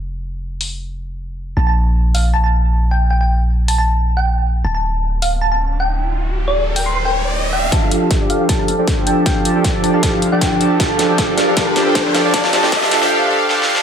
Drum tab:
HH |------------------o-----------------------------|------------------o-----------------------------|------------------o-----------------------------|------------------o-----------------------------|
SD |------------------------------------------------|------------------------------------------------|------------------------------------------------|------------------------------------------------|
BD |------------------------------------------------|------------------------------------------------|------------------------------------------------|------------------------------------------------|

HH |------------------o-----------------------------|x-----x-----x-----x-----x-----x-----x-----x-----|x-----x-----x-----x-----x-----x-----x-----x-----|x-----x-----x-----x-----x-----x-----x-----x-----|
SD |------------------------------------------------|o-----------o-----------o-----------o-----------|o-----------o-----------o-----------o-----------|o-----o-----o-----o-----o-----o-----o-----o-----|
BD |------------------------------------------------|o-----------o-----------o-----------o-----------|o-----------o-----------o-----------o-----------|o-----------o-----------o-----------o-----------|

HH |x-----x-----x-----x-----------------------------|
SD |o--o--o--o--o--o--o--o--------------o---o---o---|
BD |o-----------o-----------------------------------|